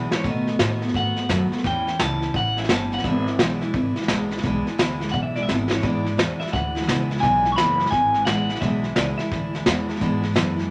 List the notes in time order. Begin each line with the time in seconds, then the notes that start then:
Already playing: B1 E2 B2 E3 G#3 D4 E4
0.12 E3 G#3 D4 E4 C#5, muted upright bass stroke, snare
0.24 B2 D#3 A3 B3 F#4, kick, snare
0.28 D#5
0.47 A3 B3 F#4, snare
0.59 A2 B2 D#3 A3 B3 F#4, snare, hi-hat pedal
0.82 A3 B3 F#4, snare
0.88 snare
0.94 G#2 D#3 A3 B3 F#4 F#5, kick, snare
1.16 A3 B3 F#4, snare
1.29 F#2 B2 D#3 A3 B3 F#4, snare, hi-hat pedal
1.51 A3 B3 F#4, muted upright bass stroke, snare
1.58 snare
1.64 E2 A2 E3 G3 C#4 E4 G5, kick, snare
1.87 G3 C#4 E4, snare
1.99 C#2 A2 E3 G3 C#4 E4 A5, snare, hi-hat pedal
2.22 G3 C#4 E4, snare
2.34 A1 E3 G3 C#4 E4 F#5, kick, snare
2.56 G3 C#4 E4 E5, snare
2.64 snare
2.69 G1 A2 E3 G3 C#4 E4 A5, snare, hi-hat pedal
2.91 G3 C#4 E4 F#5, snare
2.98 snare
3.04 G#1 E2 B2 E3 G#3 D4 E4 E5, kick, snare
3.26 E3 G#3 D4 E4, snare
3.39 B1 E2 B2 E3 G#3 D4 E4, snare, hi-hat pedal
3.61 E3 G#3 D4 E4, snare
3.73 G#1 E3 G#3 D4 E4, kick, snare
3.96 E3 G#3 D4 E4, muted upright bass stroke, snare
4.02 snare
4.08 A1 E2 B2 E3 G#3 D4 E4, snare, hi-hat pedal
4.31 E3 G#3 D4 E4, snare
4.37 snare
4.43 B1 E2 B2 E3 G#3 D4 E4, kick, snare
4.67 E3 G#3 D4 E4, snare
4.78 D2 E2 B2 E3 G#3 D4 E4, snare, hi-hat pedal
5.00 E3 G#3 D4 E4, snare
5.08 F#5, snare
5.12 B1 E3 G#3 D4 E4, kick, snare
5.23 E5
5.36 E3 G#3 D4 E4 D5, snare
5.43 E5
5.48 G#1 E2 B2 E3 G#3 D4 E4, snare, hi-hat pedal
5.70 E3 G#3 D4 E4 C#5, snare
5.81 E2 G#2 B2 E3 G#3 D4 E4 D5, kick, snare
6.05 E3 G#3 D4 E4, snare
6.17 E2 B2 E3 G#3 D4 E4, snare, hi-hat pedal
6.39 E3 G#3 D4 E4 E5, muted upright bass stroke, snare
6.47 snare
6.53 D2 E3 G#3 D4 E4 F#5, kick, snare
6.75 E3 G#3 D4 E4, snare
6.82 snare
6.87 C#2 E2 B2 E3 G#3 D4 E4, snare, hi-hat pedal
7.10 E3 G#3 D4 E4, snare
7.18 G#5, snare
7.23 B1 E2 B2 E3 G#3 D4 E4, kick, snare
7.45 E3 G#3 D4 E4, snare
7.52 C#6
7.56 F#1 E2 B2 E3 G#3 D4 E4 B5, snare, hi-hat pedal
7.79 E3 G#3 D4 E4, snare
7.86 snare
7.91 G#1 E3 G#3 D4 E4 G#5, kick, snare
8.13 E3 G#3 D4 E4, snare
8.25 A1 E2 B2 E3 G#3 D4 E4 F#5, snare, hi-hat pedal
8.49 E3 G#3 D4 E4, snare
8.55 snare
8.61 B1 E2 B2 E3 G#3 D4 E4 E5, kick, snare
8.84 G#3 D4 E4, snare
8.96 C#2 E2 B2 E3 G#3 D4 E4 D5, snare, hi-hat pedal
9.18 G#3 D4 E4 E5, muted upright bass stroke, snare
9.22 E3
9.31 D2 E3 G#3 D4 E4, kick, snare
9.53 E3 G#3 D4 E4, snare
9.66 E2 B2 E3 G#3 D4 E4, snare, hi-hat pedal
9.89 E3 G#3 D4 E4, snare
9.96 E2, snare
10.01 G#2 B2 E3 G#3 D4 E4, kick, snare
10.22 E3 G#3 D4 E4, snare
10.33 E2 F#2 B2 E3 G#3 D4 E4, snare, hi-hat pedal
10.56 E3 G#3 D4 E4, snare